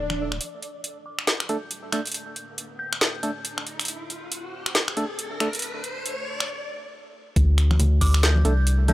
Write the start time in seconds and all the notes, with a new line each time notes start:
Already playing: D1 A3 D4 A4 D5, swell
0.10 finger snap, high conga
0.32 finger snap
0.40 A3 D4 D5, closed hi-hat, riser
0.62 closed hi-hat
0.84 closed hi-hat
1.06 D6
1.19 finger snap
1.27 G6, snare, closed hi-hat
1.40 finger snap
1.49 A3 D4 A4, closed hi-hat
1.71 closed hi-hat
1.92 A3 D4 A4 G6, finger snap, closed hi-hat
2.06 closed hi-hat
2.07 closed hi-hat
2.12 closed hi-hat
2.14 closed hi-hat
2.36 closed hi-hat
2.58 closed hi-hat
2.79 G6
2.93 finger snap
3.01 snare, closed hi-hat
3.23 A3 D4 A4, closed hi-hat
3.45 closed hi-hat
3.58 finger snap
3.67 closed hi-hat
3.79 finger snap, closed hi-hat
3.85 C5, closed hi-hat
3.88 closed hi-hat
4.10 closed hi-hat
4.32 closed hi-hat
4.66 finger snap
4.75 snare, closed hi-hat
4.88 finger snap
4.97 A3 D4 A4, closed hi-hat
5.19 closed hi-hat
5.40 A3 D4 A4, finger snap, closed hi-hat
5.53 closed hi-hat
5.55 closed hi-hat
5.59 closed hi-hat
5.62 closed hi-hat
5.84 closed hi-hat
6.06 closed hi-hat
6.40 finger snap
7.36 D2 A3 D4 D5, kick, closed hi-hat
7.58 finger snap, closed hi-hat
7.71 finger snap, high conga
7.79 closed hi-hat, low conga
8.01 D2 D6, kick, open hi-hat
8.14 finger snap
8.23 G6, snare, closed hi-hat
8.36 high conga
8.45 C2 A3 D4 A4, closed hi-hat
8.67 closed hi-hat
8.88 A3 D4 A4 G6, closed hi-hat, high conga